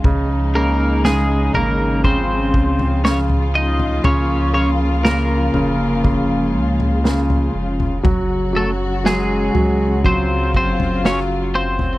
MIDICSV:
0, 0, Header, 1, 6, 480
1, 0, Start_track
1, 0, Key_signature, -5, "major"
1, 0, Tempo, 1000000
1, 19, Time_signature, 4, 2, 24, 8
1, 5751, End_track
2, 0, Start_track
2, 0, Title_t, "Clean electric guitar"
2, 0, Program_c, 0, 27
2, 266, Note_on_c, 0, 70, 65
2, 271, Note_on_c, 0, 58, 58
2, 488, Note_off_c, 0, 58, 0
2, 502, Note_off_c, 0, 70, 0
2, 504, Note_on_c, 0, 68, 81
2, 509, Note_on_c, 0, 56, 63
2, 725, Note_off_c, 0, 68, 0
2, 728, Note_off_c, 0, 56, 0
2, 743, Note_on_c, 0, 70, 80
2, 752, Note_on_c, 0, 58, 68
2, 969, Note_off_c, 0, 58, 0
2, 980, Note_off_c, 0, 70, 0
2, 982, Note_on_c, 0, 72, 88
2, 989, Note_on_c, 0, 60, 74
2, 1441, Note_off_c, 0, 72, 0
2, 1445, Note_off_c, 0, 60, 0
2, 1463, Note_on_c, 0, 73, 91
2, 1473, Note_on_c, 0, 61, 70
2, 1527, Note_off_c, 0, 73, 0
2, 1536, Note_off_c, 0, 61, 0
2, 1706, Note_on_c, 0, 75, 90
2, 1716, Note_on_c, 0, 63, 67
2, 1926, Note_off_c, 0, 75, 0
2, 1931, Note_off_c, 0, 63, 0
2, 1943, Note_on_c, 0, 73, 106
2, 1954, Note_on_c, 0, 61, 79
2, 2170, Note_off_c, 0, 61, 0
2, 2175, Note_off_c, 0, 73, 0
2, 2181, Note_on_c, 0, 73, 92
2, 2193, Note_on_c, 0, 61, 70
2, 2245, Note_off_c, 0, 73, 0
2, 2256, Note_off_c, 0, 61, 0
2, 2422, Note_on_c, 0, 70, 79
2, 2431, Note_on_c, 0, 58, 65
2, 3602, Note_off_c, 0, 70, 0
2, 3606, Note_off_c, 0, 58, 0
2, 4111, Note_on_c, 0, 69, 76
2, 4116, Note_on_c, 0, 57, 53
2, 4174, Note_off_c, 0, 69, 0
2, 4178, Note_off_c, 0, 57, 0
2, 4350, Note_on_c, 0, 68, 81
2, 4356, Note_on_c, 0, 56, 67
2, 4805, Note_off_c, 0, 68, 0
2, 4808, Note_off_c, 0, 56, 0
2, 4828, Note_on_c, 0, 72, 104
2, 4832, Note_on_c, 0, 60, 73
2, 5047, Note_off_c, 0, 72, 0
2, 5049, Note_off_c, 0, 60, 0
2, 5071, Note_on_c, 0, 60, 71
2, 5073, Note_on_c, 0, 72, 78
2, 5289, Note_off_c, 0, 60, 0
2, 5306, Note_off_c, 0, 72, 0
2, 5307, Note_on_c, 0, 61, 72
2, 5308, Note_on_c, 0, 73, 80
2, 5370, Note_off_c, 0, 73, 0
2, 5371, Note_off_c, 0, 61, 0
2, 5545, Note_on_c, 0, 60, 81
2, 5547, Note_on_c, 0, 72, 89
2, 5751, Note_off_c, 0, 60, 0
2, 5751, Note_off_c, 0, 72, 0
2, 5751, End_track
3, 0, Start_track
3, 0, Title_t, "String section"
3, 0, Program_c, 1, 48
3, 0, Note_on_c, 1, 56, 67
3, 15, Note_on_c, 1, 63, 77
3, 16, Note_on_c, 1, 53, 68
3, 17, Note_on_c, 1, 49, 72
3, 967, Note_off_c, 1, 63, 0
3, 973, Note_on_c, 1, 65, 85
3, 1919, Note_off_c, 1, 49, 0
3, 1920, Note_off_c, 1, 56, 0
3, 1939, Note_on_c, 1, 58, 67
3, 1943, Note_on_c, 1, 49, 75
3, 2889, Note_off_c, 1, 58, 0
3, 2901, Note_on_c, 1, 56, 70
3, 3837, Note_off_c, 1, 65, 0
3, 3838, Note_off_c, 1, 53, 0
3, 3842, Note_off_c, 1, 49, 0
3, 3850, Note_off_c, 1, 56, 0
3, 3857, Note_on_c, 1, 49, 72
3, 3858, Note_on_c, 1, 66, 76
3, 3861, Note_on_c, 1, 54, 70
3, 4809, Note_off_c, 1, 66, 0
3, 4821, Note_on_c, 1, 65, 86
3, 5751, Note_off_c, 1, 49, 0
3, 5751, Note_off_c, 1, 54, 0
3, 5751, Note_off_c, 1, 65, 0
3, 5751, End_track
4, 0, Start_track
4, 0, Title_t, "Grand piano"
4, 0, Program_c, 2, 0
4, 0, Control_c, 2, 64, 127
4, 23, Note_on_c, 2, 49, 63
4, 25, Control_c, 2, 64, 0
4, 109, Control_c, 2, 64, 127
4, 257, Note_off_c, 2, 49, 0
4, 264, Note_on_c, 2, 49, 56
4, 494, Note_off_c, 2, 49, 0
4, 501, Note_on_c, 2, 49, 55
4, 730, Note_off_c, 2, 49, 0
4, 738, Note_on_c, 2, 49, 51
4, 971, Note_off_c, 2, 49, 0
4, 978, Note_on_c, 2, 49, 57
4, 1451, Note_off_c, 2, 49, 0
4, 1458, Note_on_c, 2, 49, 51
4, 1924, Note_off_c, 2, 49, 0
4, 1938, Note_on_c, 2, 49, 63
4, 1945, Control_c, 2, 64, 0
4, 2034, Control_c, 2, 64, 127
4, 2168, Note_off_c, 2, 49, 0
4, 2175, Note_on_c, 2, 49, 52
4, 2410, Note_off_c, 2, 49, 0
4, 2417, Note_on_c, 2, 49, 56
4, 2653, Note_off_c, 2, 49, 0
4, 2660, Note_on_c, 2, 49, 53
4, 2892, Note_off_c, 2, 49, 0
4, 2899, Note_on_c, 2, 49, 52
4, 3372, Note_off_c, 2, 49, 0
4, 3379, Note_on_c, 2, 49, 52
4, 3845, Note_off_c, 2, 49, 0
4, 3856, Note_on_c, 2, 54, 62
4, 3866, Control_c, 2, 64, 0
4, 3943, Control_c, 2, 64, 127
4, 4087, Note_off_c, 2, 54, 0
4, 4094, Note_on_c, 2, 54, 53
4, 4333, Note_off_c, 2, 54, 0
4, 4340, Note_on_c, 2, 54, 59
4, 4570, Note_off_c, 2, 54, 0
4, 4577, Note_on_c, 2, 54, 55
4, 4813, Note_off_c, 2, 54, 0
4, 4820, Note_on_c, 2, 54, 55
4, 5292, Note_off_c, 2, 54, 0
4, 5299, Note_on_c, 2, 54, 51
4, 5751, Note_off_c, 2, 54, 0
4, 5751, End_track
5, 0, Start_track
5, 0, Title_t, "Sub bass"
5, 0, Program_c, 3, 38
5, 21, Note_on_c, 3, 37, 103
5, 721, Note_off_c, 3, 37, 0
5, 740, Note_on_c, 3, 32, 87
5, 1219, Note_on_c, 3, 37, 92
5, 1226, Note_off_c, 3, 32, 0
5, 1920, Note_off_c, 3, 37, 0
5, 1939, Note_on_c, 3, 37, 104
5, 2640, Note_off_c, 3, 37, 0
5, 2657, Note_on_c, 3, 29, 84
5, 3138, Note_on_c, 3, 37, 90
5, 3146, Note_off_c, 3, 29, 0
5, 3600, Note_off_c, 3, 37, 0
5, 3621, Note_on_c, 3, 29, 99
5, 3843, Note_off_c, 3, 29, 0
5, 3863, Note_on_c, 3, 30, 100
5, 4562, Note_off_c, 3, 30, 0
5, 4581, Note_on_c, 3, 37, 80
5, 5062, Note_on_c, 3, 30, 88
5, 5069, Note_off_c, 3, 37, 0
5, 5751, Note_off_c, 3, 30, 0
5, 5751, End_track
6, 0, Start_track
6, 0, Title_t, "Drums"
6, 21, Note_on_c, 9, 36, 110
6, 22, Note_on_c, 9, 43, 95
6, 69, Note_off_c, 9, 36, 0
6, 70, Note_off_c, 9, 43, 0
6, 503, Note_on_c, 9, 38, 101
6, 551, Note_off_c, 9, 38, 0
6, 740, Note_on_c, 9, 43, 68
6, 788, Note_off_c, 9, 43, 0
6, 980, Note_on_c, 9, 43, 68
6, 981, Note_on_c, 9, 36, 94
6, 1028, Note_off_c, 9, 43, 0
6, 1029, Note_off_c, 9, 36, 0
6, 1220, Note_on_c, 9, 36, 93
6, 1268, Note_off_c, 9, 36, 0
6, 1341, Note_on_c, 9, 43, 73
6, 1389, Note_off_c, 9, 43, 0
6, 1464, Note_on_c, 9, 38, 110
6, 1512, Note_off_c, 9, 38, 0
6, 1582, Note_on_c, 9, 43, 56
6, 1630, Note_off_c, 9, 43, 0
6, 1821, Note_on_c, 9, 43, 56
6, 1869, Note_off_c, 9, 43, 0
6, 1941, Note_on_c, 9, 43, 107
6, 1989, Note_off_c, 9, 43, 0
6, 2424, Note_on_c, 9, 38, 105
6, 2472, Note_off_c, 9, 38, 0
6, 2658, Note_on_c, 9, 43, 69
6, 2706, Note_off_c, 9, 43, 0
6, 2902, Note_on_c, 9, 36, 90
6, 2902, Note_on_c, 9, 43, 73
6, 2950, Note_off_c, 9, 36, 0
6, 2950, Note_off_c, 9, 43, 0
6, 3263, Note_on_c, 9, 43, 69
6, 3311, Note_off_c, 9, 43, 0
6, 3385, Note_on_c, 9, 38, 99
6, 3433, Note_off_c, 9, 38, 0
6, 3504, Note_on_c, 9, 43, 60
6, 3552, Note_off_c, 9, 43, 0
6, 3743, Note_on_c, 9, 43, 58
6, 3791, Note_off_c, 9, 43, 0
6, 3862, Note_on_c, 9, 36, 115
6, 3864, Note_on_c, 9, 43, 104
6, 3910, Note_off_c, 9, 36, 0
6, 3912, Note_off_c, 9, 43, 0
6, 4348, Note_on_c, 9, 38, 98
6, 4396, Note_off_c, 9, 38, 0
6, 4583, Note_on_c, 9, 43, 74
6, 4631, Note_off_c, 9, 43, 0
6, 4823, Note_on_c, 9, 36, 89
6, 4823, Note_on_c, 9, 43, 73
6, 4871, Note_off_c, 9, 36, 0
6, 4871, Note_off_c, 9, 43, 0
6, 5061, Note_on_c, 9, 36, 86
6, 5109, Note_off_c, 9, 36, 0
6, 5183, Note_on_c, 9, 43, 72
6, 5231, Note_off_c, 9, 43, 0
6, 5305, Note_on_c, 9, 38, 113
6, 5353, Note_off_c, 9, 38, 0
6, 5659, Note_on_c, 9, 43, 55
6, 5707, Note_off_c, 9, 43, 0
6, 5751, End_track
0, 0, End_of_file